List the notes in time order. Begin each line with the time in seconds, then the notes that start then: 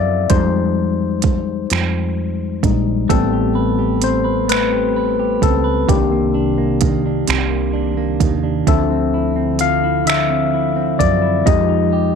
Already playing: F#2 D5 E5 F5
0.30 F2 G3 G#3 D#4 C5, kick, closed hi-hat
1.22 kick, closed hi-hat
1.70 F2, finger snap, closed hi-hat
2.63 A#1 G3 G#3 D#4, kick, closed hi-hat
3.09 A1 G3 A3 B3 C4 A4, kick, closed hi-hat
3.33 G4
3.55 B4
3.79 G4
4.02 C4 C5, closed hi-hat
4.24 B4
4.48 A3 B4, finger snap, closed hi-hat
4.72 G4
4.96 B4
5.19 G4
5.42 C#2 C4 A4, kick, closed hi-hat
5.64 B4
5.88 C2 C3 D#3 A#3 D4 G4, kick, closed hi-hat
6.12 A#3
6.34 D4
6.58 A#3
6.81 D#3, kick, closed hi-hat
7.06 D4
7.27 C2 C3, finger snap, closed hi-hat
7.50 A#3
7.73 D4
7.97 A#3
8.20 D#2 D#3, kick, closed hi-hat
8.43 D4
8.67 D2 D3 F3 C4 A4 E5, kick, closed hi-hat
8.91 C4
9.14 E4
9.36 C4
9.59 F3 F5, closed hi-hat
9.84 E4
10.05 D3 E5, closed hi-hat
10.10 finger snap
10.30 C4
10.54 E4
10.76 C4
10.98 F#2 F3 D5, kick, closed hi-hat
11.22 E4
11.45 F2 F3 G#3 D#4 G4 D#5, kick, closed hi-hat
11.69 D#4
11.93 G4